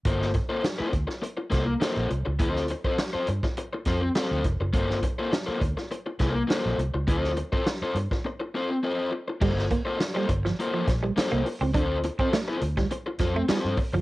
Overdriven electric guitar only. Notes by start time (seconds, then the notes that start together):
0.06 A#3 F4 A4 C5
0.34 muted overdriven electric guitar stroke
0.49 A#3 F4 A4 C5
0.64 muted overdriven electric guitar stroke
0.78 A#3 F4 A4 C5
0.92 muted overdriven electric guitar stroke
1.07 muted overdriven electric guitar stroke
1.22 muted overdriven electric guitar stroke
1.37 muted overdriven electric guitar stroke
1.50 A#3 F4 A4 C5
1.66 muted overdriven electric guitar stroke
1.81 A#3 F4 A4 C5
2.10 muted overdriven electric guitar stroke
2.25 muted overdriven electric guitar stroke
2.39 C4 F4 A4 C5
2.70 muted overdriven electric guitar stroke
2.85 C4 F4 A4 C5
2.98 muted overdriven electric guitar stroke
3.13 C4 F4 A4 C5
3.27 muted overdriven electric guitar stroke
3.44 muted overdriven electric guitar stroke
3.58 muted overdriven electric guitar stroke
3.73 muted overdriven electric guitar stroke
3.86 C4 F4 A4 C5
4.02 muted overdriven electric guitar stroke
4.16 C4 F4 A4 C5
4.45 muted overdriven electric guitar stroke
4.61 muted overdriven electric guitar stroke
4.73 A#3 F4 A4 C5
5.03 muted overdriven electric guitar stroke
5.19 A#3 F4 A4 C5
5.33 muted overdriven electric guitar stroke
5.46 A#3 F4 A4 C5
5.61 muted overdriven electric guitar stroke
5.77 muted overdriven electric guitar stroke
5.91 muted overdriven electric guitar stroke
6.06 muted overdriven electric guitar stroke
6.19 A#3 F4 A4 C5
6.35 muted overdriven electric guitar stroke
6.48 A#3 F4 A4 C5
6.80 muted overdriven electric guitar stroke
6.94 muted overdriven electric guitar stroke
7.07 C4 F4 A4 C5
7.37 muted overdriven electric guitar stroke
7.52 C4 F4 A4 C5
7.66 muted overdriven electric guitar stroke
7.83 C4 F4 A4 C5
7.96 muted overdriven electric guitar stroke
8.12 muted overdriven electric guitar stroke
8.25 muted overdriven electric guitar stroke
8.40 muted overdriven electric guitar stroke
8.55 C4 F4 A4 C5
8.71 muted overdriven electric guitar stroke
8.83 C4 F4 A4 C5
9.12 muted overdriven electric guitar stroke
9.28 muted overdriven electric guitar stroke
9.41 A#3 F4 A4 C5
9.71 muted overdriven electric guitar stroke
9.85 A#3 F4 A4 C5
9.99 muted overdriven electric guitar stroke
10.14 A#3 F4 A4 C5
10.29 muted overdriven electric guitar stroke
10.46 muted overdriven electric guitar stroke
10.59 A#3 F4 A4 C5
10.88 muted overdriven electric guitar stroke
11.04 muted overdriven electric guitar stroke
11.16 A#3 F4 A4 C5
11.46 muted overdriven electric guitar stroke
11.62 muted overdriven electric guitar stroke
11.74 C4 F4 A4 C5
12.04 muted overdriven electric guitar stroke
12.20 C4 F4 A4 C5
12.33 muted overdriven electric guitar stroke
12.48 C4 F4 A4 C5
12.61 muted overdriven electric guitar stroke
12.78 muted overdriven electric guitar stroke
12.91 muted overdriven electric guitar stroke
13.06 muted overdriven electric guitar stroke
13.20 C4 F4 A4 C5
13.35 muted overdriven electric guitar stroke
13.49 B3 E4 G#4 B4
13.60 C4 F4 A4 C5
13.78 muted overdriven electric guitar stroke
13.93 muted overdriven electric guitar stroke